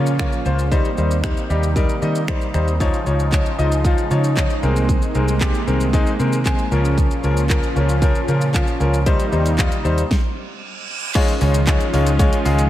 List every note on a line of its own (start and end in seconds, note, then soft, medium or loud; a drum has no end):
0.00 0.69 A#2 medium
0.00 0.28 C#3 medium
0.00 0.69 C#3 medium
0.00 0.69 F3 medium
0.00 0.69 C#4 medium
0.00 0.10 F4 medium
0.00 0.69 F4 medium
0.00 0.10 C#5 medium
0.06 shaker medium
0.19 0.36 A#3 medium
0.19 0.36 F4 medium
0.19 0.36 C#5 medium
0.19 finger snap loud
0.19 kick loud
0.19 shaker medium
0.32 shaker soft
0.45 0.80 C#2 loud
0.45 0.62 A#3 medium
0.45 0.62 F4 medium
0.45 0.62 C5 medium
0.45 shaker medium
0.59 shaker medium
0.71 2.78 C3 medium
0.71 2.78 D#3 medium
0.71 0.88 G3 loud
0.71 2.78 G3 medium
0.71 2.78 A#3 medium
0.71 6.67 D#4 medium
0.71 0.88 D#4 loud
0.71 0.88 C5 loud
0.71 kick loud
0.71 shaker medium
0.85 shaker soft
0.97 1.33 D#2 medium
0.97 1.14 G3 medium
0.97 1.14 D#4 medium
0.97 1.15 C5 medium
0.97 shaker soft
1.11 shaker medium
1.24 1.40 G3 medium
1.24 1.41 D#4 medium
1.24 1.41 C5 medium
1.24 finger snap loud
1.24 kick loud
1.24 shaker medium
1.37 shaker medium
1.50 1.85 D#2 medium
1.50 1.66 G3 medium
1.50 1.67 D#4 medium
1.50 1.67 G4 medium
1.50 shaker soft
1.63 shaker medium
1.76 1.93 G3 loud
1.76 1.93 D#4 medium
1.76 1.93 A#4 loud
1.76 kick loud
1.76 shaker medium
1.89 shaker soft
2.02 2.37 D#3 medium
2.02 2.19 G3 medium
2.02 2.19 D#4 medium
2.02 2.19 D#5 loud
2.02 shaker medium
2.15 shaker medium
2.28 2.45 G3 medium
2.28 2.45 D#4 medium
2.28 2.45 C5 medium
2.28 finger snap loud
2.28 kick loud
2.28 shaker medium
2.41 shaker soft
2.54 2.89 D#2 loud
2.54 2.71 G3 medium
2.54 2.71 D#4 medium
2.54 2.71 C5 medium
2.54 finger snap medium
2.54 shaker soft
2.68 shaker medium
2.80 4.61 C#3 medium
2.80 2.97 F3 loud
2.80 4.61 F3 medium
2.80 6.68 G#3 medium
2.80 2.97 D#4 loud
2.80 4.61 F4 medium
2.80 2.97 C#5 loud
2.80 kick loud
2.80 shaker medium
2.94 shaker soft
3.06 3.41 C#2 medium
3.06 3.23 F3 medium
3.06 3.23 D#4 medium
3.06 3.23 C#5 medium
3.06 shaker soft
3.20 shaker medium
3.32 3.49 F3 medium
3.32 3.49 D#4 medium
3.32 3.49 C#5 medium
3.32 kick loud
3.32 clap loud
3.32 shaker medium
3.46 shaker soft
3.58 3.93 C#2 medium
3.58 3.75 F3 medium
3.58 3.75 D#4 medium
3.58 3.75 D#5 loud
3.58 shaker soft
3.72 shaker medium
3.85 4.01 F3 loud
3.85 4.01 D#4 medium
3.85 4.02 F4 loud
3.85 kick loud
3.85 shaker medium
3.98 shaker soft
4.11 4.46 C#3 medium
4.11 4.27 F3 medium
4.11 4.28 D#4 medium
4.11 4.28 C#5 loud
4.11 shaker medium
4.24 shaker medium
4.37 4.53 F3 medium
4.37 4.54 D#4 medium
4.37 4.54 C#5 medium
4.37 kick loud
4.37 clap loud
4.37 shaker medium
4.50 shaker soft
4.63 4.98 C2 medium
4.63 6.70 C3 medium
4.63 6.70 D#3 medium
4.63 5.05 G#3 medium
4.63 6.70 A#3 medium
4.63 5.05 C4 medium
4.63 5.05 A#4 medium
4.63 shaker soft
4.76 shaker medium
4.89 kick loud
4.89 shaker medium
5.02 shaker soft
5.15 5.50 C2 medium
5.15 5.32 G#3 medium
5.15 5.32 C4 medium
5.15 5.32 A#4 medium
5.15 shaker soft
5.28 shaker medium
5.41 5.58 G#3 medium
5.41 5.58 C4 medium
5.41 5.58 G4 loud
5.41 kick loud
5.41 clap loud
5.41 shaker medium
5.54 shaker medium
5.67 6.02 C2 medium
5.67 5.84 G#3 medium
5.67 5.84 C4 medium
5.67 5.84 A#4 loud
5.67 shaker medium
5.80 shaker medium
5.93 6.10 G#3 loud
5.93 6.10 C4 loud
5.93 6.10 D#4 loud
5.93 kick loud
5.93 shaker medium
6.07 shaker soft
6.19 6.54 C3 medium
6.19 6.36 G#3 medium
6.19 6.36 C4 medium
6.19 6.36 A#4 medium
6.19 shaker medium
6.33 shaker medium
6.45 6.62 G#3 medium
6.45 6.62 C4 medium
6.45 6.62 G#4 medium
6.45 kick loud
6.45 clap loud
6.45 shaker medium
6.59 shaker soft
6.71 7.06 C#2 loud
6.71 9.04 A#2 medium
6.71 9.04 C#3 medium
6.71 7.13 F3 medium
6.71 9.04 F3 medium
6.71 7.13 C#4 medium
6.71 9.04 C#4 medium
6.71 9.04 F4 medium
6.71 7.13 A#4 loud
6.71 shaker medium
6.85 shaker medium
6.98 kick loud
6.98 shaker medium
7.11 shaker soft
7.24 7.59 C#2 medium
7.24 7.40 F3 medium
7.24 7.41 C#4 medium
7.24 7.41 A#4 loud
7.24 shaker soft
7.37 shaker medium
7.50 7.66 F3 medium
7.50 7.67 C#4 medium
7.50 7.67 A#4 loud
7.50 kick loud
7.50 clap loud
7.50 shaker medium
7.63 shaker medium
7.76 8.11 C#2 medium
7.76 7.93 F3 medium
7.76 7.93 C#4 medium
7.76 7.93 A#4 medium
7.76 shaker medium
7.89 shaker medium
8.02 8.19 F3 loud
8.02 8.19 C#4 loud
8.02 8.19 A#4 loud
8.02 kick loud
8.02 shaker medium
8.15 shaker soft
8.28 8.63 C#3 medium
8.28 8.45 F3 medium
8.28 8.45 C#4 medium
8.28 8.45 A#4 loud
8.28 shaker medium
8.41 shaker medium
8.54 8.71 F3 medium
8.54 8.71 C#4 medium
8.54 8.71 F4 loud
8.54 kick loud
8.54 clap loud
8.54 shaker medium
8.67 shaker soft
8.80 9.15 C#2 loud
8.80 8.97 F3 medium
8.80 8.97 C#4 medium
8.80 8.97 A#4 medium
8.80 shaker medium
8.94 shaker medium
9.06 10.10 C3 medium
9.06 10.10 D#3 medium
9.06 9.23 G3 loud
9.06 10.10 G3 medium
9.06 10.10 A#3 medium
9.06 9.23 D#4 loud
9.06 10.10 D#4 medium
9.06 9.23 C5 loud
9.06 kick loud
9.06 closed hi-hat medium
9.06 shaker medium
9.20 closed hi-hat soft
9.20 shaker soft
9.32 9.67 D#2 medium
9.32 9.49 G3 medium
9.32 9.49 D#4 medium
9.32 9.49 C5 medium
9.32 shaker soft
9.46 closed hi-hat medium
9.46 shaker medium
9.58 9.75 G3 medium
9.58 9.75 D#4 medium
9.58 9.75 F4 loud
9.58 kick loud
9.58 clap loud
9.58 closed hi-hat medium
9.58 shaker medium
9.72 closed hi-hat medium
9.72 shaker medium
9.84 10.02 D#2 medium
9.84 10.01 G3 medium
9.84 10.01 D#4 medium
9.84 10.01 C5 loud
9.84 shaker medium
9.98 closed hi-hat medium
9.98 shaker medium
10.11 kick loud
10.11 snare medium
10.11 reverse cymbal medium
11.15 12.70 D#3 medium
11.15 12.70 F3 medium
11.15 11.32 G#3 loud
11.15 12.70 G#3 medium
11.15 12.70 C#4 medium
11.15 11.32 D#4 loud
11.15 12.70 F4 medium
11.15 11.32 F4 loud
11.15 11.32 C#5 loud
11.15 kick loud
11.15 closed hi-hat medium
11.15 crash loud
11.15 shaker medium
11.28 closed hi-hat soft
11.28 shaker soft
11.41 11.76 C#2 loud
11.41 11.58 G#3 medium
11.41 11.58 D#4 medium
11.41 11.58 F4 medium
11.41 11.58 C#5 loud
11.41 open hi-hat medium
11.41 shaker medium
11.54 closed hi-hat medium
11.54 shaker medium
11.67 11.84 G#3 medium
11.67 11.84 D#4 medium
11.67 11.84 F4 medium
11.67 11.84 C#5 loud
11.67 kick loud
11.67 clap loud
11.67 clap medium
11.67 closed hi-hat medium
11.67 shaker medium
11.81 closed hi-hat medium
11.81 shaker medium
11.93 12.28 C#2 medium
11.93 12.10 G#3 medium
11.93 12.10 D#4 medium
11.93 12.10 F4 medium
11.93 12.10 C#5 loud
11.93 open hi-hat medium
11.93 shaker medium
12.07 closed hi-hat medium
12.07 shaker medium
12.19 12.36 G#3 loud
12.19 12.36 D#4 loud
12.19 12.36 F4 loud
12.19 12.36 C#5 loud
12.19 kick loud
12.19 closed hi-hat medium
12.19 shaker medium
12.33 closed hi-hat soft
12.33 shaker soft
12.45 12.70 C#2 loud
12.45 12.62 G#3 medium
12.45 12.62 D#4 medium
12.45 12.62 F4 medium
12.45 12.62 G#4 loud
12.45 open hi-hat medium
12.45 shaker medium
12.59 closed hi-hat medium
12.59 shaker medium